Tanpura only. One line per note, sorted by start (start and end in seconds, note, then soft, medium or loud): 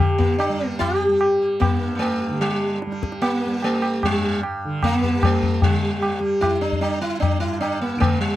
0.00 1.68 G2 medium
0.00 2.28 D3 medium
0.00 0.49 G3 medium
0.49 1.08 G3 medium
1.08 2.87 G3 medium
1.68 4.06 G2 medium
2.29 4.64 D3 medium
2.87 3.46 G3 medium
3.46 5.23 G3 medium
4.07 7.39 G2 medium
4.64 5.62 D3 medium
5.23 6.20 G3 medium
5.62 7.97 D3 medium
6.20 6.80 G3 medium
6.80 8.36 G3 medium
7.39 8.36 G2 medium
7.97 8.36 D3 medium